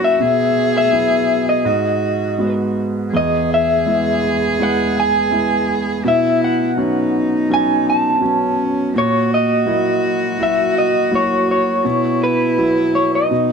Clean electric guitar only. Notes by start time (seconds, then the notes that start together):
0.04 E5
0.78 E5
1.49 D#5
3.17 D#5
3.54 E5
4.63 F#5
5.00 G#5
6.08 E5
6.44 F#5
7.54 G#5
7.90 A5
8.98 C#5
9.34 D#5
10.43 E5
10.78 D#5
11.15 C#5
11.51 C#5
12.24 B4
12.95 C#5
13.15 D#5